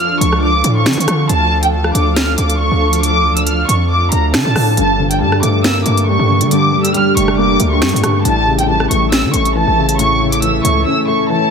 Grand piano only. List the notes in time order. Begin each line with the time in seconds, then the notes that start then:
4.78 G2
4.99 D3
5.20 G3
5.43 A3
5.65 A#3
5.86 A3
6.08 G3
6.30 D3
6.51 G2
6.73 D3
6.95 G3
7.16 A3
7.39 A#3
7.60 A3
7.82 G3
8.04 D3
8.26 A2
8.47 C#3
8.69 E3
8.90 A3
9.12 C#4
9.34 A3
9.55 E3
9.78 C#3
9.99 A2
10.21 C#3
10.43 E3
10.64 A3
10.87 C#4
11.08 A3
11.29 E3